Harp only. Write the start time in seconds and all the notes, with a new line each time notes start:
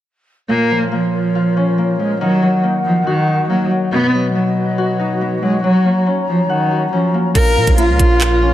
0.49 A#2
0.71 F3
0.92 A#3
1.35 F4
1.57 C#4
1.78 A#3
1.99 F3
2.21 D#3
2.42 F#3
2.63 A#3
3.07 F#4
3.28 D#4
3.50 A#3
3.71 F#3
3.92 B2
4.14 F#3
4.35 B3
4.78 F#4
4.99 D#4
5.21 B3
5.42 F#3
5.64 F#3
5.85 A#3
6.06 C#4
6.49 F#5
6.71 F#4
6.93 C#4
7.14 A#3
7.35 A#2
7.57 F3
7.77 A#3
8.21 F4
8.42 C#4